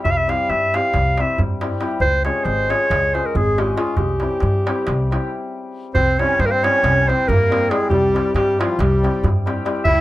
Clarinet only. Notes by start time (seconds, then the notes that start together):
0.04 E5
0.11 F5
0.17 E5
0.30 F5
0.50 E5
0.75 F5
1.21 E5
2.01 C5
2.25 C#5
2.44 C5
2.70 C#5
3.14 C5
3.26 A#4
3.36 G#4
3.59 G4
3.77 F4
3.97 G4
5.95 C5
6.19 C#5
6.40 C5
6.46 A#4
6.51 C5
6.64 C#5
7.08 C5
7.28 A#4
7.70 G#4
7.90 G4
8.36 G4
8.60 F4
8.81 G4
9.84 E5